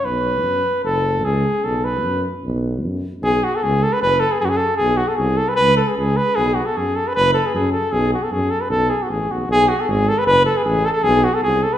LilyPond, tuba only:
\new Staff \with { instrumentName = "Tuba" } { \clef bass \time 2/4 \tempo 4 = 153 b,,4 fis,4 | fis,,4 cis,4 | b,,4 fis,4 | b,,4 fis,4 |
b,,4 cis,4 | fis,,4 fis,4 | b,,4 bis,,4 | cis,4 cis,4 |
b,,4 fis,4 | fis,,4 fis,4 | b,,4 fis,4 | b,,4 a,,8 b,,8 |
b,,4 gis,,4 | fis,,4 a,,4 | b,,4 bis,,4 | }